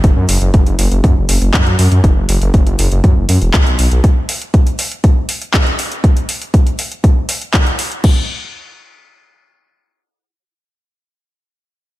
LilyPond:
<<
  \new Staff \with { instrumentName = "Detuned saw bass" } { \clef bass \time 4/4 \key fis \phrygian \tempo 4 = 120 fis,,16 fis,16 fis,,16 fis,,16 fis,,16 fis,,16 fis,,16 fis,,16 fis,16 fis,,16 fis,,16 fis,,16 fis,16 fis,16 fis,16 fis,16 | fis,,16 fis,,16 fis,,16 fis,,16 fis,,16 fis,,16 fis,,16 fis,,16 fis,16 fis,,16 fis,16 e,,16 cis,16 b,,16 b,,16 b,,16 | r1 | r1 |
r1 | r1 | }
  \new DrumStaff \with { instrumentName = "Drums" } \drummode { \time 4/4 <hh bd>8 hho16 hh16 <hh bd>16 hh16 hho16 hh16 <hh bd>8 hho16 hh16 <hc hh bd>16 hh16 hho16 hh16 | <hh bd>8 hho16 hh16 <hh bd>16 hh16 hho16 hh16 <hh bd>8 hho16 hh16 <hc hh bd>16 hh16 hho16 hh16 | <hh bd>8 hho16 hh16 <hh bd>16 hh16 hho16 hh16 <hh bd>8 hho16 hh16 <hc hh bd>16 hh16 hho16 hh16 | <hh bd>16 hh16 hho16 hh16 <hh bd>16 hh16 hho16 hh16 <hh bd>8 hho16 hh16 <hc hh bd>16 hh16 hho16 hh16 |
<cymc bd>4 r4 r4 r4 | r4 r4 r4 r4 | }
>>